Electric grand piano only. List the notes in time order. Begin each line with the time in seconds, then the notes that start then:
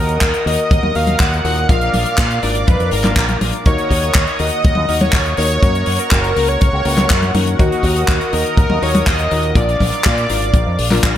Already playing: D#3 A#3 D#4 F#4 A#4
0.46 D#3 A#3 D#4 F#4 A#4
0.95 D#3 A#3 D#4 F#4 A#4
1.44 A#2 A#3 D#4 F#4 A#4
1.69 A#2 A#3 D4 F4 A#4
2.43 A#2 A#3 D4 F4 A#4
3.04 A#2 A#3 D4 F4 A#4
3.66 D#3 A#3 D#4 F#4 A#4
4.40 D#3 A#3 D#4 F#4 A#4
4.89 D#3 A#3 D#4 F#4 A#4
5.38 A#3 D#4 F#4 A#4
5.62 A#3 C#4 F#4 A#4
6.36 A#3 C#4 F#4 A#4
6.85 A#3 C#4 F#4 A#4
7.34 D#3 A#3 C#4 F#4 A#4
7.59 D#3 A#3 D#4 F#4 A#4
8.33 D#3 A#3 D#4 F#4 A#4
8.82 D#3 A#3 D#4 F#4 A#4
9.31 A#2 A#3 D#4 F#4 A#4
9.56 A#2 A#3 D4 F4 A#4
10.30 A#2 A#3 D4 F4 A#4
10.91 A#2 A#3 D4 F4 A#4